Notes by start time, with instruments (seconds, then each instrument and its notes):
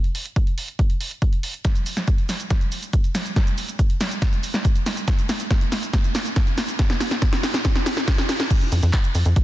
0.04 closed hi-hat
0.15 open hi-hat
0.26 closed hi-hat
0.36 kick, closed hi-hat
0.47 closed hi-hat
0.58 open hi-hat
0.68 closed hi-hat
0.79 kick, closed hi-hat
0.90 closed hi-hat
1.00 open hi-hat
1.11 closed hi-hat
1.22 kick, closed hi-hat
1.33 closed hi-hat
1.43 open hi-hat
1.54 closed hi-hat
1.65 kick, snare, closed hi-hat, shaker
1.75 closed hi-hat, shaker
1.86 open hi-hat, shaker
1.97 snare, closed hi-hat, shaker
2.08 kick, closed hi-hat, shaker
2.18 closed hi-hat
2.29 snare, open hi-hat, shaker
2.40 closed hi-hat, shaker
2.50 kick, snare, closed hi-hat, shaker
2.61 closed hi-hat, shaker
2.72 open hi-hat, shaker
2.83 closed hi-hat, shaker
2.93 kick, closed hi-hat, shaker
3.04 closed hi-hat, shaker
3.15 snare, open hi-hat, shaker
3.26 closed hi-hat, shaker
3.36 kick, snare, closed hi-hat, shaker
3.47 closed hi-hat, shaker
3.58 open hi-hat, shaker
3.69 closed hi-hat, shaker
3.79 kick, closed hi-hat, shaker
3.90 closed hi-hat
4.01 snare, open hi-hat, shaker
4.11 closed hi-hat, shaker
4.22 kick, snare, closed hi-hat, shaker
4.33 closed hi-hat, shaker
4.43 open hi-hat, shaker
4.54 snare, closed hi-hat, shaker
4.65 kick, closed hi-hat, shaker
4.76 closed hi-hat, shaker
4.86 snare, open hi-hat, shaker
4.97 closed hi-hat, shaker
5.08 kick, snare, closed hi-hat, shaker
5.18 closed hi-hat, shaker
5.29 snare, open hi-hat, shaker
5.40 closed hi-hat, shaker
5.51 kick, snare, closed hi-hat, shaker
5.61 closed hi-hat
5.72 snare, open hi-hat, shaker
5.83 closed hi-hat, shaker
5.93 kick, snare, closed hi-hat, shaker
6.04 closed hi-hat, shaker
6.15 snare, open hi-hat, shaker
6.26 closed hi-hat, shaker
6.36 kick, snare, closed hi-hat, shaker
6.47 closed hi-hat, shaker
6.58 snare, open hi-hat, shaker
6.68 closed hi-hat, shaker
6.79 kick, snare, closed hi-hat, shaker
6.90 snare, closed hi-hat, shaker
7.00 snare, open hi-hat, shaker
7.11 snare, closed hi-hat, shaker
7.22 kick, snare, closed hi-hat, shaker
7.33 snare, closed hi-hat, shaker
7.43 snare, open hi-hat, shaker
7.54 snare, closed hi-hat, shaker
7.65 kick, snare, closed hi-hat, shaker
7.75 snare, closed hi-hat, shaker
7.86 snare, open hi-hat, shaker
7.97 snare, closed hi-hat, shaker
8.08 kick, snare, closed hi-hat, shaker
8.18 snare, closed hi-hat, shaker
8.29 snare, open hi-hat, shaker
8.40 snare, closed hi-hat, shaker
8.51 kick, closed hi-hat, crash, ride, shaker
8.61 closed hi-hat, shaker
8.72 analog synth bass F2, open hi-hat, ride, shaker
8.83 analog synth bass F2, closed hi-hat, shaker
8.93 kick, clap, closed hi-hat, ride, shaker
9.04 closed hi-hat, shaker
9.15 analog synth bass F2, open hi-hat, ride, shaker
9.25 analog synth bass F2, closed hi-hat, shaker
9.36 kick, closed hi-hat, ride, shaker